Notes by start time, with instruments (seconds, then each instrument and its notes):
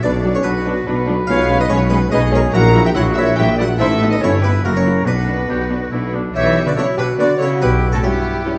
0.03 tuba B1, double bass section B1, cello section B2, viola section F#3 D4, oboe D4, french horn section D4, flute B4, harpsichord D5, violin section D5
0.24 viola section F#3 D4
0.35 french horn section C#4, flute A4, harpsichord C#5, violin section C#5
0.43 tuba B1, double bass section B1, cello section B2, viola section F#3 D4, oboe F#4, flute F#4, harpsichord B4, violin section B4
0.48 french horn section B3
0.66 viola section F#3 D4
0.86 double bass section B1, tuba B1, cello section B2, viola section F#3 D4, oboe B4
1.07 viola section F#3 D4
1.27 double bass section B1, tuba B1, cello section B2, viola section G#3 C#4, french horn section F4, flute C#5, harpsichord F5, violin section F5
1.49 viola section G#3 C#4
1.59 french horn section D#4, flute B4, violin section D#5, harpsichord D#5
1.69 double bass section B1, tuba B1, cello section B2, viola section G#3 C#4, french horn section C#4, flute G#4, harpsichord C#5, violin section C#5
1.90 viola section G#3 C#4, french horn section B3, flute G#4, harpsichord B4, violin section B4
2.11 double bass section B1, tuba B1, cello section B2, viola section G#3 C#4, french horn section D#4, oboe G#4, flute B4, violin section D#5, harpsichord D#5
2.32 viola section G#3 C#4, french horn section C#4, flute A#4, violin section C#5, harpsichord C#5
2.53 double bass section A#1, tuba A#1, cello section A#2, viola section F#3 E4, oboe F#4, french horn section A#4, flute F#5, violin section A#5, harpsichord A#5
2.75 viola section F#3 E4
2.85 french horn section G4, flute E5, violin section G5, harpsichord G5
2.94 double bass section A#1, tuba A#1, cello section A#2, viola section F#3 E4, french horn section F#4, oboe F#4, flute C#5, violin section F#5, harpsichord F#5
3.14 viola section F#3 E4, french horn section E4, flute C#5, violin section E5
3.18 harpsichord E5
3.35 double bass section A#1, tuba A#1, cello section A#2, viola section F#3 E4, french horn section G4, flute E5, violin section G5
3.39 harpsichord G5
3.58 viola section F#3 E4, french horn section F#4, flute D5, violin section F#5, harpsichord F#5
3.78 double bass section A1, tuba A1, cello section A2, viola section B3 D#4, french horn section E4, oboe A4, flute C5, violin section E5, harpsichord E5
4.01 viola section B3 D#4
4.10 french horn section D#4, flute B4, violin section D#5, harpsichord D#5
4.18 double bass section G1, tuba G1, cello section G2, french horn section C#4, oboe E4, flute A4, violin section C#5
4.22 viola section B3 E4, harpsichord C#5
4.40 french horn section B3, viola section B3 E4, flute G4, violin section B4, harpsichord B4
4.62 double bass section F#1, tuba F#1, cello section F#2, french horn section A#3, viola section A#3 E4, flute F#4, oboe F#4, violin section A#4, harpsichord A#4
4.73 french horn section C#4, flute A#4, violin section C#5, harpsichord C#5
4.85 viola section A#3 E4
5.05 double bass section B1, tuba B1, cello section B2, french horn section B3, viola section B3 D4, oboe D4, flute F#4, violin section B4, harpsichord B4
5.27 viola section B3 D4
5.48 double bass section B1, tuba B1, cello section B2, viola section B3 D4, oboe G4
5.70 viola section B3 D4
5.83 oboe F#4
5.91 double bass section B1, tuba B1, cello section B2, viola section B3 D4, oboe E4
6.13 viola section B3 D4, oboe D4
6.34 double bass section B1, tuba B1, cello section E3, oboe G4, flute C#5, violin section E5, harpsichord E5
6.65 cello section D3, oboe F#4, flute B4, violin section D5, harpsichord D5
6.75 cello section C#3, viola section B3 D4, oboe E4, violin section F#4 C#5, french horn section F#4, flute A4, harpsichord C#5
6.96 cello section B2, oboe D4, flute G4, violin section B4, harpsichord B4
7.18 cello section D3, viola section B3 D4, oboe F#4, violin section F#4 D5, flute B4, harpsichord D5
7.39 cello section C#3, oboe E4, flute A4, violin section C#5, harpsichord C#5
7.60 tuba B1, double bass section B1, cello section B2, oboe E4, flute G4, harpsichord B4, violin section B4
7.91 cello section A2, oboe C#4, flute F#4, harpsichord A4, violin section A4
8.02 cello section G2, viola section G3 C#4, oboe B3, flute E4, violin section E4 G4, harpsichord G4
8.45 viola section G3 C#4, french horn section E4, violin section E4